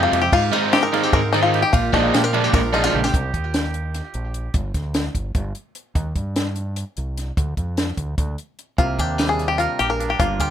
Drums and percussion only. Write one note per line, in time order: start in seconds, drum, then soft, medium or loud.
0.13 ride medium
0.33 kick loud
0.33 crash loud
0.53 ride medium
0.73 snare loud
0.73 ride loud
0.94 snare soft
0.94 ride medium
1.13 kick loud
1.13 ride loud
1.34 snare soft
1.34 ride medium
1.54 snare soft
1.54 ride medium
1.73 kick loud
1.73 ride loud
1.93 kick medium
1.93 snare soft
1.93 ride medium
2.14 snare loud
2.14 ride loud
2.34 ride medium
2.54 kick loud
2.54 snare soft
2.54 ride medium
2.74 snare soft
2.74 ride medium
2.85 snare medium
2.94 mid tom medium
3.04 snare medium
3.14 kick loud
3.14 closed hi-hat medium
3.34 kick medium
3.34 closed hi-hat medium
3.54 snare loud
3.54 closed hi-hat medium
3.74 closed hi-hat medium
3.94 snare soft
3.94 closed hi-hat medium
4.14 closed hi-hat medium
4.34 closed hi-hat medium
4.54 kick loud
4.54 closed hi-hat medium
4.74 kick medium
4.74 snare soft
4.74 closed hi-hat medium
4.94 snare loud
4.94 closed hi-hat medium
5.15 kick medium
5.15 closed hi-hat medium
5.35 kick loud
5.35 closed hi-hat medium
5.55 closed hi-hat soft
5.75 closed hi-hat medium
5.95 kick loud
5.95 closed hi-hat medium
6.16 kick medium
6.16 closed hi-hat medium
6.36 snare loud
6.36 closed hi-hat medium
6.56 closed hi-hat medium
6.76 closed hi-hat medium
6.97 closed hi-hat medium
7.18 snare soft
7.18 closed hi-hat medium
7.37 kick loud
7.37 closed hi-hat medium
7.57 kick medium
7.57 closed hi-hat medium
7.77 snare loud
7.77 closed hi-hat medium
7.97 kick medium
7.97 closed hi-hat medium
8.18 kick loud
8.18 closed hi-hat medium
8.38 closed hi-hat medium
8.59 closed hi-hat medium
8.78 kick loud
8.78 closed hi-hat medium
8.99 kick medium
8.99 closed hi-hat medium
9.19 snare loud
9.19 closed hi-hat medium
9.39 snare soft
9.39 closed hi-hat medium
9.59 snare soft
9.59 closed hi-hat medium
9.80 closed hi-hat medium
10.00 snare soft
10.00 closed hi-hat medium
10.20 kick loud
10.20 closed hi-hat medium
10.40 kick medium
10.40 closed hi-hat medium